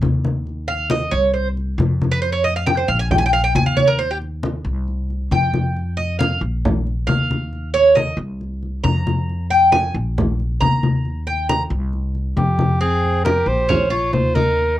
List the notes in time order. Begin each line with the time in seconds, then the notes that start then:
0.02 D#2, high conga
0.25 high conga
0.47 high conga
0.68 F5, high conga
0.90 D#5, high conga
1.11 C2 C#5, high conga
1.34 C5, high conga
1.57 high conga
1.78 F2, high conga
2.01 high conga
2.11 B4
2.22 C5, high conga
2.32 C#5
2.44 D#5, high conga
2.56 F5
2.66 G5, high conga
2.77 C5
2.88 A#1 F5, high conga
2.99 G#5
3.11 G5, high conga, low conga
3.18 G#5
3.25 G5
3.33 F5, high conga
3.43 G5
3.55 D#2 G#5, high conga
3.66 F5
3.77 C#5, high conga
3.87 A#4
3.99 C5, high conga
4.11 G4
4.22 high conga
4.43 high conga
4.65 C2, high conga
4.88 high conga
5.10 high conga
5.31 F2 G5, high conga
5.53 high conga
5.76 high conga
5.97 D#5, high conga
6.19 F5, high conga
6.41 A#1, high conga
6.65 high conga, low conga
6.87 high conga
7.07 D#2 F5, high conga
7.31 high conga
7.53 high conga
7.74 C#5, high conga
7.95 D#5, high conga
8.17 C2, high conga
8.41 high conga
8.63 high conga
8.84 F2 A#5, high conga
9.07 high conga
9.30 high conga
9.50 G5, high conga
9.72 G#5, high conga
9.94 A#1, high conga
10.18 high conga, low conga
10.39 high conga
10.60 D#2 A#5, high conga
10.83 high conga
11.05 high conga
11.27 G5, high conga
11.49 A#5, high conga
11.70 C2, high conga
11.93 high conga
12.15 high conga
12.37 F2 G4, high conga
12.59 high conga
12.81 C4 G#4, high conga
13.04 high conga
13.24 G4 A#4, high conga
13.46 A#1 C5, high conga
13.69 C#4, high conga, low conga
13.90 F4 C#5, high conga
14.13 D#2 C5, high conga
14.35 D#4 A#4, high conga
14.58 high conga